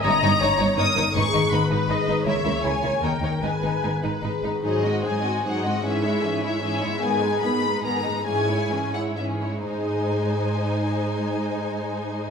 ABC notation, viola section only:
X:1
M:3/4
L:1/8
Q:1/4=149
K:G#m
V:1 name="Viola section"
d2 c2 A2 | G2 B2 d2 | c4 A2 | B4- B z |
[F,D] [G,^B,] [F,D] [G,B,] [F,D] [G,B,] | [E,C] [G,E] [E,C] [G,E] [E,C] [G,E] | [D,B,] G, [D,B,] G, [D,B,] G, | [E,C] [G,E] [E,C] [G,E] [E,C] [G,E] |
[G,D]6- | [G,D]6 |]